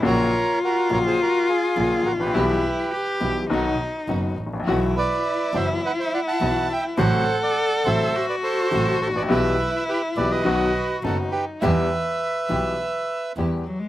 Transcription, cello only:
\new Staff \with { instrumentName = "Cello" } { \time 4/4 \key e \minor \tempo 4 = 104 f'1 | e'4 g'4 dis'4. r8 | e'1 | a'2 fis'2 |
e'2 fis'4 dis'4 | r2. r8 fis16 gis16 | }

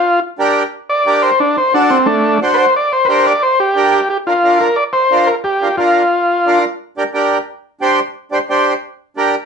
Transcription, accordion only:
\new Staff \with { instrumentName = "Accordion" } { \time 4/4 \key g \minor \tempo 4 = 178 r4 <d' g' bes'>8 r4. <d' g' bes'>8 r8 | r4 <d' fis' a'>8 r4. <d' fis' c''>8 r8 | r4 <d' g' bes'>8 r4. <d' g' bes'>8 r8 | r8 <d' f' bes'>8 <d' f' bes'>8 r4. <d' f' bes'>8 r8 |
r8 <d' f' bes'>8 <d' f' bes'>8 r4. <d' f' bes'>8 r8 | r8 <d' g' bes'>8 <d' g' bes'>8 r4. <d' g' c''>8 r8 | r8 <d' g' c''>8 <d' g' c''>8 r4. <d' g' bes'>8 r8 | }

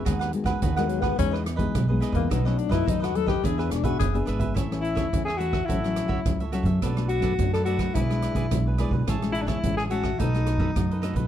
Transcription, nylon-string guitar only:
\new Staff \with { instrumentName = "Nylon-string guitar" } { \time 4/4 \key e \major \tempo 4 = 106 << { <gis b fis'>8 <gis b fis'>8 r16 <gis b fis'>8. <gis b dis'>8 r16 <gis b dis'>8 <gis b dis'>8. | <fis a dis'>16 <fis a dis'>8 <fis a dis'>8. <fis a dis'>16 r16 <b d' gis'>8. <b d' gis'>8 <b d' gis'>8. | \key a \major <e a cis'>16 <e a cis'>8. <e a cis'>16 r16 <e a cis'>16 r16 <fis cis' e'>16 <fis cis' e'>8. <fis cis' e'>16 r16 <fis cis' e'>8 | <a d' fis'>16 <a d' fis'>8. <a d' fis'>8 <a d' fis'>8 <gis d' e'>16 <gis d' e'>8. <gis d' e'>8 <gis d' e'>8 |
<gis cis' e'>16 <gis cis' e'>8. <gis cis' e'>8 <gis cis' e'>16 r16 <a dis' fis'>16 <a dis' fis'>8. <a dis' fis'>16 r16 <a dis' fis'>8 | } \\ { dis4 dis4 e4 b,4 | b,4 fis,4 e4 b,4 | a,4 e4 a,4 a,4 | b,4 fis4 b,4 b,4 |
a,4 e4 b,4 fis4 | } >> }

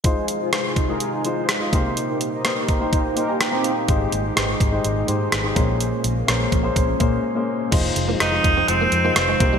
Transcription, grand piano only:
\new Staff \with { instrumentName = "Grand piano" } { \time 4/4 \key f \minor \tempo 4 = 125 << { r2. r8 c8~ | c4 r8 bes''8 g''8. aes''16 g''8 f''8 | aes,4. r2 bes,8~ | bes,4 r2. |
r2. r8 c8 | } \\ { <aes ees' f' c''>4 <aes ees' f' c''>8. <aes ees' f' aes'>8. <aes ees' f' c''>8. <aes ees' f' ees''>16 <bes ees' g' c''>8~ | <bes ees' g' c''>8. r16 <bes ees' g' c''>8. <bes ees' g' c''>8. <bes ees' g' c''>8. <bes ees' g' c''>8. | <aes ees' g' c''>4 <aes ees' g' c''>8. <aes ees' g' c''>8. <aes ees' g' c''>8. <aes ees' g' c''>16 <bes des' aes' c''>8~ | <bes des' aes' c''>8. r16 <bes des' aes' c''>8. <bes des' aes' c''>8. <bes des' aes' c''>8. <bes des' aes' c''>8. |
<aes ees' f' c''>8. <aes ees' f' c''>8 <aes ees' f' c''>8. <aes ees' f' c''>8. <aes ees' f' c''>8. <bes ees' g' c''>8 | } >> }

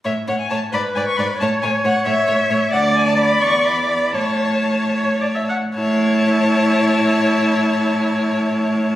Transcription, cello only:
\new Staff \with { instrumentName = "Cello" } { \clef bass \time 6/8 \key a \major \tempo 4. = 78 a,8 a,8 a,8 gis,8 gis,8 gis,8 | a,8 a,8 a,8 a,8 a,8 a,8 | d,4. e,4. | a,2~ a,8 r8 |
a,2.~ | a,2. | }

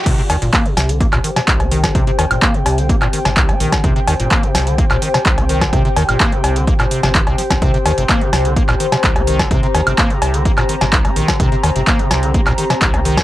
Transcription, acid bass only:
\new Staff \with { instrumentName = "Acid bass" } { \clef bass \time 4/4 \key c \minor \tempo 4 = 127 c16 c16 ees16 bes,16 bes16 c16 c16 d16 bes16 bes,16 ees16 c16 c,16 c'16 ees16 d16 | c16 c16 ees16 bes,16 bes16 c16 c16 d16 bes16 bes,16 ees16 c16 c,16 c'16 ees16 d16 | c16 c16 ees16 bes,16 bes16 c16 c16 d16 bes16 bes,16 ees16 c16 c,16 c'16 ees16 d16 | c16 c16 ees16 bes,16 bes16 c16 c16 d16 bes16 bes,16 c16 c16 ees16 c16 f16 c'16 |
c16 c16 ees16 c16 bes16 c16 c16 d16 bes16 bes,16 ees16 c16 c,16 c'16 ees16 d16 | c16 c16 ees16 c16 bes16 c16 c16 d16 bes16 bes,16 ees16 c16 c,16 c'16 ees16 d16 | c16 c16 ees16 c16 bes16 c16 c16 d16 bes16 bes,16 ees16 c16 c,16 c'16 ees16 d16 | }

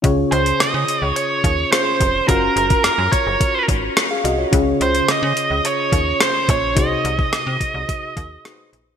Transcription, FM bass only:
\new Staff \with { instrumentName = "FM bass" } { \clef bass \time 4/4 \key des \major \tempo 4 = 107 des,8 des,8 des16 des16 r16 des,16 r8 ees,8 r8 f,,8 | ges,,8 ges,,8 ges,16 ges,16 r16 ges,,16 r8 aes,,8 r8 c,8 | des,8 des,8 des16 des16 r16 des,16 r8 ees,8 r8 bes,,8 | c,8 c,8 c16 c16 r16 c,16 r8 ees,8 r8 bes,,8 | }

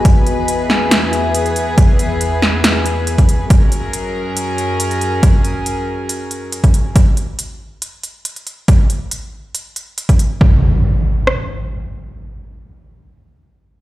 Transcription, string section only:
\new Staff \with { instrumentName = "String section" } { \time 4/4 \key fis \mixolydian \tempo 4 = 139 <e, e b gis' b'>1~ | <e, e b gis' b'>1 | <fis, fis cis' gis' ais'>1~ | <fis, fis cis' gis' ais'>1 |
r1 | r1 | r1 | r1 | }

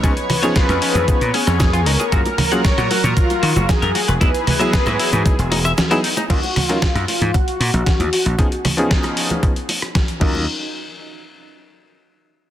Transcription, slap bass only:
\new Staff \with { instrumentName = "Slap bass" } { \clef bass \time 4/4 \key ees \minor \tempo 4 = 115 des,16 r4 f,16 r16 f,16 r16 bes,16 r16 f,8. des,16 r16 | ges,16 r4 bes,16 r16 bes,16 r8 ees16 ges,,16 r16 ges,16 r16 e,,16 | r4 r16 gis,16 r16 gis,16 r16 e,,8. r4 | ees,16 r4 ges,16 r16 aes,16 r8 bes,16 bes,,16 r16 ees,16 r16 bes,,16 |
r2. r8 ees,8 | r1 | }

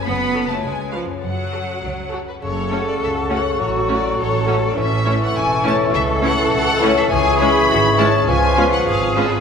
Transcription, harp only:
\new Staff \with { instrumentName = "Harp" } { \time 2/4 \key fis \minor \tempo 4 = 102 << { r2 | r2 | fis,16 cis'16 fis'16 a'16 fis''16 a''16 cis''16 a'16 | a,16 cis'8 a'16 fis''16 a''16 cis''16 a'16 |
a,16 cis'16 e'16 a'16 e''16 a''16 cis''16 a'16 | cis16 cis'16 e'16 a'16 e''16 a''16 cis''16 a'16 | \key cis \phrygian cis16 cis'16 e'16 gis'16 e''16 gis''16 cis''16 gis'16 | cis16 b16 eis'16 gis'16 eis''16 gis''16 b'16 gis'16 | } \\ { <fis, cis' fis' a'>4 <cis cis' eis' b'>4 | <fis, cis' fis' a'>2~ | <fis, cis' fis' a'>2~ | <fis, cis' fis' a'>2~ |
<fis, cis' fis' a'>2 | r2 | r2 | r2 | } >> }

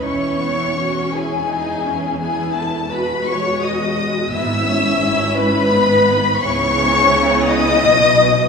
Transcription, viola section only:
\new Staff \with { instrumentName = "Viola section" } { \time 3/4 \key e \major \tempo 4 = 85 << { e'4 fis'8 e'4. | e'4 fis'2 | e'4 e'4 dis'4 | \key cis \minor e'2. | } \\ { cis'8 b8 cis'4 dis'8 cis'8 | b4 gis2 | b8 cis'4. b4 | b2. | } >> }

